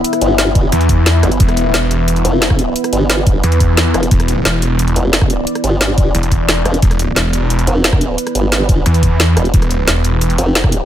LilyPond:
<<
  \new Staff \with { instrumentName = "Ambient pad" } { \time 4/4 \key e \phrygian \tempo 4 = 177 << { e''1 | b'1~ | b'1 | d''1~ |
d''1 | b'1~ | b'1 | g'1 | } \\ { <b e'>1~ | <b e'>1~ | <b e'>1~ | <b e'>1~ |
<b e'>1~ | <b e'>1~ | <b e'>1~ | <b e'>1 | } >> }
  \new Staff \with { instrumentName = "Wobble bass" } { \clef bass \time 4/4 \key e \phrygian r8 g,,4. r4. g,,8 | r2 r8 f,,4. | r8 g,,4. r4. e,,8 | r2 r8 f,,4. |
r8 g,,4. r4. e,,8 | r2 r8 f,,4. | r8 g,,4. r4. e,,8 | r2 r8 f,,4. | }
  \new Staff \with { instrumentName = "Detuned saw bass" } { \clef bass \time 4/4 \key e \phrygian r2 e,4. r8 | e,,4 e,,4. r4. | r2 e,4. r8 | e,,4 e,,4. r4. |
r2 e,,4. r8 | e,,4 e,,4. r4. | r2 e,4. r8 | e,,4 e,,4. r4. | }
  \new DrumStaff \with { instrumentName = "Drums" } \drummode { \time 4/4 hh16 <hh ss>16 hh8 <hh sn>8 <hh bd>8 hh16 hh16 <hh bd>8 <hh sn>8 <hh ss>16 hh16 | <hh bd>16 <hh ss>16 hh8 <hh sn>8 hh8 hh16 hh16 hh8 <hh sn>16 <bd ss>16 hh8 | hh16 <hh ss>16 hh8 <hh sn>8 <hh bd>8 hh16 hh16 <hh bd>8 <hh sn>8 <hh ss>16 hh16 | <hh bd>16 <hh ss>16 hh8 <hh sn>8 hh8 hh16 hh16 hh8 <hh sn>16 <bd ss>16 hh8 |
hh16 <hh ss>16 hh8 <hh sn>8 <hh bd>8 hh16 hh16 <hh bd>8 <hh sn>8 <hh ss>16 hh16 | <hh bd>16 <hh ss>16 hh8 <hh sn>8 hh8 hh16 hh16 hh8 <hh sn>16 <bd ss>16 hh8 | hh16 <hh ss>16 hh8 <hh sn>8 <hh bd>8 hh16 hh16 <hh bd>8 <hh sn>8 <hh ss>16 hh16 | <hh bd>16 <hh ss>16 hh8 <hh sn>8 hh8 hh16 hh16 hh8 <hh sn>16 <bd ss>16 hh8 | }
>>